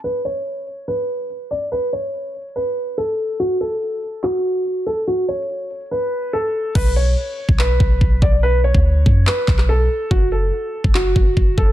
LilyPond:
<<
  \new Staff \with { instrumentName = "Grand piano" } { \time 4/4 \key fis \phrygian \tempo 4 = 143 b'8 cis''4. b'4. d''8 | b'8 cis''4. b'4 a'4 | fis'8 a'4. fis'4. a'8 | fis'8 cis''4. b'4 a'4 |
b'8 cis''4. b'4. d''8 | b'8 cis''4. b'4 a'4 | fis'8 a'4. fis'4. a'8 | }
  \new Staff \with { instrumentName = "808-style bass" } { \clef bass \time 4/4 \key fis \phrygian r1 | r1 | r1 | r1 |
b,,4 r8. b,,8. b,,8 b,,8 b,,8~ | b,,8. d,8. fis,8 r8 b,,4 r8 | fis,,4 r8. fis,,8. fis,,8 fis,,8 fis,,8 | }
  \new DrumStaff \with { instrumentName = "Drums" } \drummode { \time 4/4 r8 hh32 hh32 hh32 hh32 hh8 hh8 hh4 hh8 hh8 | hh8 hh8 \tuplet 3/2 { hh16 r16 r16 hh16 hh16 hh16 hh16 hh16 hh16 r16 r16 r16 } hh16 hh16 hh8 | hh8 hh32 hh32 hh32 hh32 hh8 hh8 <hc hh>4 hh8 hh8 | \tuplet 3/2 { hh16 r16 r16 hh16 hh16 hh16 } hh8 hh32 hh32 hh32 hh32 r4 r4 |
<cymc bd>4 r8. bd16 hc8 bd8 bd8 bd8 | r8. bd16 r8 bd8 hc8 <hc bd>16 <hc ss>16 r4 | bd4 r8. bd16 hc8 bd8 bd8 bd8 | }
>>